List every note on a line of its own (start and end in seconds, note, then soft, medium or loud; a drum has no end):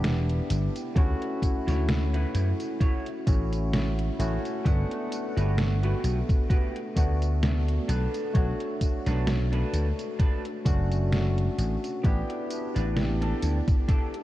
0.00 0.39 E1 medium
0.00 0.98 B3 medium
0.00 0.99 D4 medium
0.00 0.97 E4 medium
0.00 0.98 G4 medium
0.04 snare loud
0.04 closed hi-hat medium
0.04 tambourine soft
0.30 closed hi-hat soft
0.50 0.67 G1 medium
0.50 closed hi-hat medium
0.50 tambourine medium
0.76 closed hi-hat soft
0.76 tambourine soft
0.95 1.13 D2 medium
0.95 3.21 A3 medium
0.95 3.22 C#4 medium
0.95 3.22 E4 medium
0.95 3.23 F#4 loud
0.95 muted clean electric guitar stroke loud
0.95 kick loud
0.95 closed hi-hat medium
0.95 tambourine soft
1.21 muted clean electric guitar stroke soft
1.21 closed hi-hat soft
1.42 kick medium
1.42 closed hi-hat medium
1.42 tambourine medium
1.67 2.24 D2 medium
1.67 1.88 E4 medium
1.67 1.89 F#4 medium
1.67 1.89 C#5 loud
1.67 snare soft
1.67 closed hi-hat soft
1.67 tambourine soft
1.89 snare loud
1.89 closed hi-hat medium
1.89 tambourine soft
2.14 2.47 E4 medium
2.14 2.48 F#4 medium
2.14 2.48 B4 medium
2.14 closed hi-hat soft
2.35 2.52 F#2 medium
2.35 closed hi-hat medium
2.35 tambourine medium
2.60 closed hi-hat soft
2.60 tambourine soft
2.80 3.06 E4 medium
2.80 3.06 F#4 medium
2.80 3.07 C#5 medium
2.80 kick loud
2.80 closed hi-hat medium
2.80 tambourine soft
3.06 closed hi-hat soft
3.26 4.08 A1 medium
3.26 4.14 A3 medium
3.26 4.14 C#4 medium
3.26 4.14 E4 medium
3.26 4.15 F#4 medium
3.26 muted clean electric guitar stroke soft
3.26 kick loud
3.26 closed hi-hat medium
3.26 tambourine medium
3.53 closed hi-hat soft
3.53 tambourine soft
3.73 snare loud
3.73 closed hi-hat medium
3.73 tambourine soft
3.99 closed hi-hat soft
4.19 4.36 A1 medium
4.19 4.60 A3 medium
4.19 4.61 C#4 medium
4.19 4.61 E4 medium
4.19 4.61 F#4 medium
4.19 closed hi-hat medium
4.19 tambourine medium
4.45 closed hi-hat soft
4.45 tambourine soft
4.64 4.82 G1 medium
4.64 6.91 A3 medium
4.64 6.91 B3 medium
4.64 6.92 D4 medium
4.64 6.92 F#5 loud
4.64 muted clean electric guitar stroke loud
4.64 kick loud
4.64 closed hi-hat medium
4.64 tambourine soft
4.90 muted clean electric guitar stroke soft
4.90 closed hi-hat soft
5.12 closed hi-hat medium
5.12 tambourine medium
5.37 5.93 G1 medium
5.37 5.58 F#4 medium
5.37 5.58 G4 medium
5.37 5.58 B4 loud
5.37 closed hi-hat soft
5.37 tambourine soft
5.58 snare loud
5.58 closed hi-hat medium
5.58 tambourine soft
5.83 6.17 F#4 medium
5.83 6.17 G4 medium
5.83 6.17 B4 medium
5.83 closed hi-hat soft
6.04 6.21 B1 medium
6.04 closed hi-hat medium
6.04 tambourine medium
6.29 kick loud
6.29 closed hi-hat soft
6.29 tambourine soft
6.50 6.75 F#4 medium
6.50 6.76 G4 medium
6.50 6.76 B4 medium
6.50 kick loud
6.50 closed hi-hat medium
6.50 tambourine soft
6.76 closed hi-hat soft
6.96 7.78 D2 medium
6.96 7.22 A3 medium
6.96 7.22 B3 medium
6.96 7.23 D4 medium
6.96 7.23 F#4 medium
6.96 muted clean electric guitar stroke soft
6.96 kick medium
6.96 closed hi-hat medium
6.96 tambourine medium
7.22 closed hi-hat soft
7.22 tambourine soft
7.43 snare loud
7.43 closed hi-hat medium
7.43 tambourine soft
7.68 closed hi-hat soft
7.88 8.06 B1 medium
7.88 8.45 D4 medium
7.88 8.45 A4 medium
7.88 8.45 B4 loud
7.88 closed hi-hat medium
7.88 tambourine medium
8.14 closed hi-hat soft
8.14 tambourine soft
8.34 8.52 B1 medium
8.34 10.60 A3 medium
8.34 10.61 D4 medium
8.34 10.61 F#4 loud
8.34 10.60 C#5 medium
8.34 kick loud
8.34 closed hi-hat medium
8.34 tambourine soft
8.60 muted clean electric guitar stroke soft
8.60 closed hi-hat soft
8.81 kick medium
8.81 closed hi-hat medium
8.81 tambourine medium
9.06 9.62 B1 medium
9.06 9.27 D4 medium
9.06 9.27 A4 medium
9.06 9.28 B4 loud
9.06 snare soft
9.06 closed hi-hat soft
9.06 tambourine soft
9.27 snare loud
9.27 closed hi-hat medium
9.27 tambourine soft
9.52 9.86 D4 medium
9.52 9.86 A4 medium
9.52 9.86 B4 medium
9.52 closed hi-hat soft
9.73 9.90 D2 medium
9.73 closed hi-hat medium
9.73 tambourine medium
9.99 closed hi-hat soft
9.99 tambourine soft
10.19 10.45 D4 medium
10.19 10.45 A4 medium
10.19 10.45 B4 medium
10.19 kick loud
10.19 closed hi-hat medium
10.19 tambourine soft
10.45 closed hi-hat soft
10.65 11.47 F#1 medium
10.65 10.91 A3 medium
10.65 10.92 C#4 medium
10.65 10.92 D4 medium
10.65 10.92 F#4 medium
10.65 muted clean electric guitar stroke soft
10.65 kick loud
10.65 closed hi-hat medium
10.65 tambourine medium
10.92 closed hi-hat soft
10.92 tambourine soft
11.12 snare loud
11.12 closed hi-hat medium
11.12 tambourine soft
11.38 closed hi-hat soft
11.58 11.75 A1 medium
11.58 closed hi-hat medium
11.58 tambourine medium
11.84 closed hi-hat soft
11.84 tambourine soft
12.03 12.21 A1 medium
12.03 14.23 B3 medium
12.03 14.23 D4 medium
12.03 14.23 E4 medium
12.03 14.23 G4 loud
12.03 muted clean electric guitar stroke loud
12.03 kick loud
12.03 closed hi-hat medium
12.03 tambourine soft
12.29 muted clean electric guitar stroke soft
12.29 closed hi-hat soft
12.50 closed hi-hat medium
12.50 tambourine medium
12.75 13.32 A1 medium
12.75 12.96 D4 medium
12.75 12.96 G4 medium
12.75 12.97 B4 medium
12.75 closed hi-hat soft
12.75 tambourine soft
12.97 snare loud
12.97 closed hi-hat medium
12.97 tambourine soft
13.21 13.55 D4 medium
13.21 13.55 G4 medium
13.21 13.56 A4 medium
13.21 closed hi-hat soft
13.43 13.60 D2 medium
13.43 closed hi-hat medium
13.43 tambourine medium
13.68 kick loud
13.68 closed hi-hat soft
13.68 tambourine soft
13.88 14.14 D4 medium
13.88 14.14 G4 medium
13.88 14.14 A4 medium
13.88 kick loud
13.88 closed hi-hat medium
13.88 tambourine soft
14.14 closed hi-hat soft